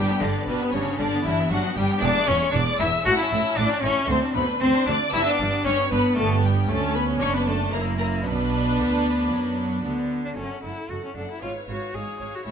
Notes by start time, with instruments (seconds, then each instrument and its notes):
Already playing: lute G2 B3 D4 G4, cello G3, violin section G4 G5
0.10 viola section B3
0.21 double bass section G1, lute G2, cello section G2, cello D3, violin section D4 D5, viola section D4
0.36 viola section B3
0.47 double bass section G1, lute G2, cello section G2, cello B2, violin section B3 B4, viola section D4
0.61 viola section B3
0.72 double bass section G1, lute G2, cello section G2, cello C#3, violin section C#4 C#5, viola section D4
0.88 viola section B3
0.98 double bass section G1, lute G2, cello section G2, cello D3, violin section D4 D5, viola section D4
1.14 viola section B3
1.24 double bass section G1, lute G2, cello section G2, cello E3, violin section E4 E5
1.28 viola section D4
1.40 viola section B3
1.49 double bass section G1, lute G2, cello section G2, cello F#3, viola section D4, violin section F#4 F#5
1.65 viola section B3
1.76 double bass section G1, lute G2, cello section G2, cello G3, viola section D4, violin section G4 G5
1.91 viola section B3
1.98 lute B3 E4 G#4, cello D4
2.02 double bass section E1, lute E2, cello section E2, viola section B3, violin section D5 D6
2.16 viola section G#3
2.27 double bass section E1, lute E2, cello section E2, viola section B3, cello C#4, violin section C#5 C#6
2.43 viola section G#3
2.52 double bass section E1, cello section E2, lute E2, viola section B3, cello D4, violin section D5 D6
2.69 viola section G#3
2.80 double bass section E1, lute E2, cello section E2, viola section B3, cello E4, violin section E5 E6
2.94 viola section G#3
3.01 lute A3 C#4 A4
3.05 double bass section A1, lute A2, cello section A2, viola section E4, cello F#4, violin section F#5 F#6
3.18 viola section C#4, cello E4, violin section E5 E6
3.31 double bass section A1, lute A2, cello section A2, viola section E4
3.45 viola section C#4
3.57 double bass section A1, lute A2, cello section A2, cello D4, viola section E4, violin section D5 D6
3.70 viola section C#4
3.83 double bass section A1, lute A2, cello section A2, cello C#4, viola section E4, violin section C#5 C#6
3.97 viola section C#4
4.04 lute A3 F#4
4.08 lute D2, double bass section D2, cello section D2, cello C4, viola section C4, violin section C5 C6
4.23 viola section D4
4.35 double bass section D2, lute D2, cello section D2, cello B3, viola section C4, violin section B4 B5
4.48 viola section D4
4.60 double bass section D2, lute D2, cello section D2, viola section C4, cello C4, violin section C5 C6
4.73 viola section D4
4.86 double bass section D2, lute D2, cello section D2, viola section C4, cello D4, violin section D5 D6
4.99 viola section D4
5.10 double bass section G1, lute B3 D4 G4, viola section D4, cello E4
5.14 lute G2, cello section G2, violin section E5 E6
5.25 viola section B3, cello D4, violin section D5 D6
5.38 double bass section G1, cello section G2, lute G2, viola section D4
5.51 viola section B3
5.64 double bass section G1, lute G2, cello section G2, cello C#4, viola section D4, violin section C#5 C#6
5.78 viola section B3
5.90 double bass section G1, cello section G2, lute G2, cello B3, viola section D4, violin section B4 B5
6.04 viola section B3
6.13 lute B3 D4 F4
6.17 double bass section G1, lute G2, cello section G2, cello A3, viola section B3, violin section A4 A5
6.43 cello G3, violin section G4 G5
6.68 lute D2, cello section D2, double bass section D2, cello A3, viola section C#4, violin section A4 A5
6.95 cello B3, violin section B4 B5
7.17 lute B3 D4 F#4, cello C#4, violin section C#5
7.21 double bass section F#1, lute F#2, cello section F#2, viola section D4, violin section C#6
7.34 cello B3, violin section B4 B5
7.46 cello A3, violin section A4 A5
7.70 cello section F#2, cello A#3, lute C#4 E4 F#4, viola section E4, violin section A#4 A#5
7.74 double bass section F#1, lute F#2
7.99 cello A#3, violin section A#4 A#5
8.22 cello section B2, lute B3 D4 F#4, cello B3, violin section B4 B5
8.26 double bass section B1, lute B2, viola section D4
8.79 double bass section D2, lute D3, cello section D3
9.32 double bass section F#2, cello section F#3, lute F#3
9.84 double bass section D2, cello section D3, lute D3, cello B3
10.25 cello D4
10.34 double bass section F#1, cello section F#2, lute A3 C#4 F#4, cello C#4, viola section A4, violin section F#5
10.38 lute F#2
10.64 double bass section F#1, cello section F#2, lute F#2, cello E4, viola section A4, violin section F#5
10.89 double bass section F#1, cello section F#2, lute F#2, cello F#4, viola section A4, violin section F#5
11.05 cello C#4
11.15 double bass section F#1, lute F#2, cello section F#2, cello D4, viola section A4, violin section F#5
11.31 cello E4
11.39 double bass section G#1, lute B3 C#4 F4, violin section B4 F5, viola section C#5
11.43 lute G#2, cello section G#2, cello F4
11.67 double bass section G#1, cello section G#2, lute G#2, cello F#4, viola section C#5, violin section F5
11.94 double bass section G#1, cello section G#2, lute G#2, cello G#4, violin section C#5 F5, viola section C#5
12.19 double bass section G#1, cello section G#2, lute G#2, viola section C#5, violin section F5
12.35 cello F#4
12.43 double bass section A1, cello section A2, lute A3 C#4 F#4, cello E4, viola section C#5, violin section F#5
12.47 lute A2